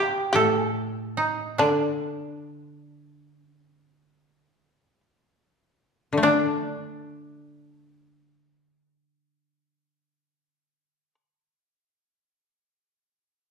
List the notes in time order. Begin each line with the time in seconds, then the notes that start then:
Already playing: D#4 G4
0.33 A2 G4 A4
0.55 G#4
0.69 A4
1.17 D#4
1.58 D3 D4
3.34 C#4
3.76 C4
6.13 D3
6.17 A3
6.23 D4